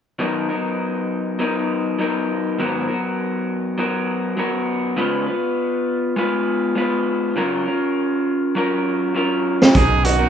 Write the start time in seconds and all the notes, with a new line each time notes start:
0.19 B2 D#3 F#3 B3 D#4 A#4
0.49 F#3 B3 D#4 A#4
1.39 F#3 B3 D#4 A#4
1.99 F#3 B3 D#4 A#4
2.58 G#2 D#3 F#3 B3 F#4 A#4
2.88 F#3 B3 F#4 A#4
3.78 F#3 B3 F#4 A#4
4.37 F#3 B3 F#4 A#4
4.96 C#3 G#3 B3 F4 B4
5.26 B3 F4 B4
6.16 G#3 B3 F4 B4
6.75 G#3 B3 F4 B4
7.36 C#3 F#3 C#4 F4 A#4
7.66 C#4 F4 A#4
8.55 F#3 C#4 F4 A#4
9.14 F#3 C#4 F4 A#4
9.62 snare
9.73 B1 B2 D#3 F#3 B3 C#4 D#4 F#4 G#4 A#4, kick, closed hi-hat
10.04 F#4, closed hi-hat
10.19 B2 D#3 F#3 B3 D#4 A#4